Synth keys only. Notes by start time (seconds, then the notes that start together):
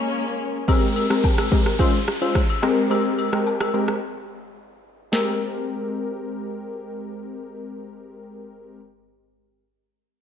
0.68 G#3 C4 G4 A#4
1.10 G#3 C4 G4 A#4
1.51 G#3 C4 G4 A#4
1.79 G#3 C#4 F4 C5
2.21 G#3 C#4 F4 C5
2.62 G#3 C4 G4 A#4
2.90 G#3 C4 G4 A#4
3.32 G#3 C4 G4 A#4
3.73 G#3 C4 G4 A#4
5.12 G#3 C4 G4 A#4